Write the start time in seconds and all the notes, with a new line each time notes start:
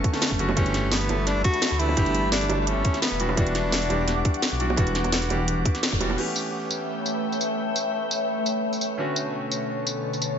Already playing: D3 A3 B3 C#4 F#4 A4 A5 C#6
0.04 kick, closed hi-hat
0.13 D3 A3 B3 C#4 A4, snare, closed hi-hat
0.22 snare, closed hi-hat
0.31 F#1, kick
0.39 D3 A3 B3 C#4 F#4, closed hi-hat
0.49 high bongo
0.56 G1 D3 E3 A3 B3 C#4 G4 E5 A5 B5, kick, closed hi-hat
0.66 closed hi-hat
0.74 snare, closed hi-hat
0.84 G1
0.92 B3, snare, closed hi-hat
1.01 closed hi-hat
1.08 G1 E3 A3 B3 D4 A4, closed hi-hat, high bongo
1.27 D4, snare, closed hi-hat
1.36 G1
1.44 F#4, kick, closed hi-hat
1.54 closed hi-hat
1.62 snare, closed hi-hat
1.71 D2
1.79 E3 A3 B3 D4 E4 G4, closed hi-hat
1.89 high bongo
1.96 G1 E3 A3 B3 D4 G4, kick, closed hi-hat
2.06 closed hi-hat
2.15 closed hi-hat
2.24 G1
2.32 D4, snare, closed hi-hat
2.41 closed hi-hat
2.49 G1 D3 E3 A3 B3 A4, closed hi-hat, high bongo
2.61 D4
2.67 C#4, closed hi-hat
2.77 G1
2.85 kick, closed hi-hat
2.94 snare, closed hi-hat
3.02 B3, snare, closed hi-hat
3.12 E1
3.19 E3 G3 B3 D4 F#4 F#5 D6, closed hi-hat
3.29 high bongo
3.36 E1 E3 G3 B3 D4 F#4, kick, closed hi-hat
3.47 closed hi-hat
3.55 snare, closed hi-hat
3.64 E1
3.72 snare, closed hi-hat
3.82 closed hi-hat
3.89 E1 E3 G3 B3 D4 G4, closed hi-hat, high bongo
4.08 snare, closed hi-hat
4.17 E1
4.25 kick, closed hi-hat
4.34 closed hi-hat
4.42 snare, closed hi-hat
4.52 B1
4.59 E3 G3 B3 D4 F#4, closed hi-hat
4.70 high bongo
4.76 E1 E3 G3 B3 D4 F#4, kick, closed hi-hat
4.87 closed hi-hat
4.95 snare, closed hi-hat
5.04 E1, closed hi-hat, high bongo
5.12 snare, closed hi-hat
5.22 closed hi-hat
5.29 E1 E3 G3 B3 D4 G4, closed hi-hat, high bongo
5.48 closed hi-hat
5.57 E1
5.65 kick, closed hi-hat
5.75 snare, closed hi-hat
5.83 snare, closed hi-hat
5.92 E1, kick
6.00 E3 G3 B3 D4 F#4, closed hi-hat, high bongo
6.10 high bongo
6.17 E3 A3 B3 C#4 G4 B4 C#5 E5 G5, crash
6.36 tambourine
6.71 tambourine
7.06 tambourine
7.32 tambourine
7.41 tambourine
7.76 tambourine
8.11 tambourine
8.46 tambourine
8.73 tambourine
8.81 tambourine
8.97 B2 D3 A3 B3 C#4 F#4 A4
9.16 tambourine
9.52 tambourine
9.87 tambourine
10.13 tambourine
10.22 tambourine